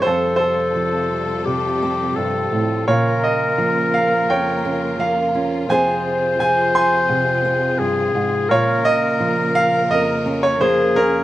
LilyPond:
<<
  \new Staff \with { instrumentName = "Grand piano" } { \time 4/4 \key bes \dorian \tempo 4 = 85 << { c''8 c''2. r8 | des''8 ees''4 f''8 g''4 f''4 | aes''4 aes''8 c'''2 r8 | des''8 ees''4 f''8 ees''8. des''16 c''8 bes'8 | } \\ { a'8 a'2. r8 | f'2 des''2 | c''4. aes''2 r8 | f'2 bes'4. des'8 | } >> }
  \new Staff \with { instrumentName = "Clarinet" } { \time 4/4 \key bes \dorian a'2 g'4 a'4 | bes'2.~ bes'8 r8 | c''2. aes'4 | bes'2~ bes'8 r8 aes'4 | }
  \new Staff \with { instrumentName = "String section" } { \time 4/4 \key bes \dorian << { <c g a'>1 | <des bes bes'>1 | <c aes'>1 | <des bes bes'>1 | } \\ { f'1~ | f'1~ | f'1~ | f'1 | } >> }
  \new Staff \with { instrumentName = "Steel-string acoustic guitar" } { \clef bass \time 4/4 \key bes \dorian << { r2 r8 c'4. | r2 r8 des'8 bes8 des'8 | <f c' aes'>2~ <f c' aes'>8 c'4. | r2 r8 des'8 bes8 des'8 | } \\ { f,4 f4 c4 g,8 a,8 | bes,4 f4 f,4 f4 | f,4 f4 c4 g,8 aes,8 | bes,4 f4 f,4 f4 | } >> }
>>